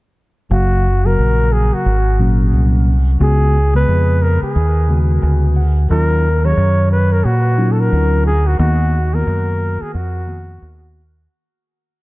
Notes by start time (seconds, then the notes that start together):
0.50 F#1 C#3 F#3 A#3 F#4 F5
1.04 C#3 F#3 A#3 F#4 A#4
1.18 A#1
1.53 G#4
1.73 F#4, muted fingered electric bass stroke
1.86 G#1
2.18 A#2 F#3 A#3 C#4
2.53 C2
3.19 C#2 C#3 G#3 B3 F#4 G#4
3.74 C#3 G#3 B3 G#4 B4
3.88 F2
4.22 A#4
4.42 G#4, muted fingered electric bass stroke
4.56 D#2
4.88 C#3 G#3 B3 F#4
5.22 D2 G#5
5.56 F#5
5.89 D#2 D#3 F#3 C#4 F4 A#4
6.44 D#3 F#3 C#4 G4 C#5
6.52 G#4
6.57 F#2
6.92 B4
7.12 A#4
7.25 A#2 F#4
7.57 F#3 C#4 D#4 F4
7.72 A4
7.80 A#4
7.92 D2
8.26 G#4
8.47 F#4
8.58 D#2 D#3 A#3 B3 F#4
9.13 D#3 A#3 B3 F4 A#4
9.21 F#4
9.27 F#2
9.82 G#4, muted fingered electric bass stroke
9.94 F2 F#4
10.27 D#3 A#3 B3 F#4
10.62 D#2